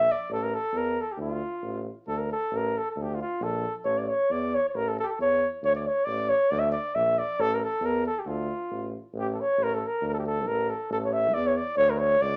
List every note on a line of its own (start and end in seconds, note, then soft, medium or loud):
0.00 0.13 E5 loud
0.12 0.32 D5 loud
0.29 0.54 A1 loud
0.29 0.45 A4 loud
0.43 0.56 A#4 medium
0.54 0.79 A4 loud
0.73 0.98 E2 medium
0.77 1.02 A#4 loud
1.01 1.14 A4 medium
1.12 1.21 G4 medium
1.17 1.42 D2 medium
1.21 1.83 F4 medium
1.62 1.87 A1 medium
2.06 2.31 D2 medium
2.06 2.20 A4 loud
2.18 2.29 A#4 medium
2.32 2.58 A4 loud
2.51 2.76 A1 medium
2.56 2.79 A#4 medium
2.78 2.88 A4 medium
2.91 3.04 A4 medium
2.96 3.20 D2 medium
3.02 3.16 G4 medium
3.15 3.21 F4 medium
3.22 3.45 F4 medium
3.40 3.65 A#1 medium
3.40 3.76 A4 loud
3.85 4.09 A1 medium
3.85 4.00 C#5 loud
3.98 4.10 D5 medium
4.08 4.33 C#5 loud
4.30 4.54 E2 medium
4.30 4.56 D5 medium
4.55 4.65 C#5 loud
4.69 4.77 C#5 medium
4.74 4.98 A1 medium
4.74 4.90 A#4 loud
4.88 4.97 A4 medium
4.99 5.10 G4 medium
4.99 5.04 A4 medium
5.09 5.18 A4 medium
5.19 5.43 E2 medium
5.19 5.51 C#5 loud
5.62 5.86 D2 medium
5.62 5.74 C#5 loud
5.75 5.88 D5 medium
5.87 6.06 C#5 loud
6.05 6.31 A1 medium
6.05 6.31 D5 loud
6.29 6.52 C#5 loud
6.51 6.75 D2 loud
6.51 6.61 D5 loud
6.59 6.71 E5 medium
6.72 6.96 D5 loud
6.95 7.19 A#1 medium
6.95 7.20 E5 loud
7.19 7.42 D5 loud
7.39 7.63 A1 loud
7.39 7.56 A4 loud
7.55 7.66 A#4 medium
7.64 7.87 A4 loud
7.81 8.06 E2 medium
7.86 8.06 A#4 loud
8.06 8.21 A4 loud
8.20 8.29 G4 medium
8.26 8.50 D2 medium
8.26 8.93 F4 medium
8.70 8.95 A1 medium
9.14 9.38 A1 loud
9.18 9.28 G4 loud
9.34 9.42 A4 medium
9.40 9.65 C#5 loud
9.58 9.82 A1 medium
9.63 9.76 A#4 loud
9.74 9.89 A4 medium
9.87 10.07 A#4 medium
10.01 10.48 D2 medium
10.07 10.09 A#4 loud
10.13 10.17 A4 medium
10.19 10.23 G4 medium
10.27 10.49 A4 loud
10.46 10.71 A1 medium
10.46 10.71 A#4 loud
10.70 10.91 A4 medium
10.90 11.35 A1 loud
10.90 10.97 A4 loud
11.05 11.14 C#5 medium
11.13 11.35 E5 loud
11.34 11.58 E2 loud
11.34 11.48 D5 loud
11.47 11.58 C#5 medium
11.57 11.77 D5 loud
11.77 12.20 D2 loud
11.77 11.92 C#5 loud
11.90 12.00 A#4 medium
11.99 12.23 C#5 loud
12.21 12.37 C#2 medium
12.21 12.37 D5 loud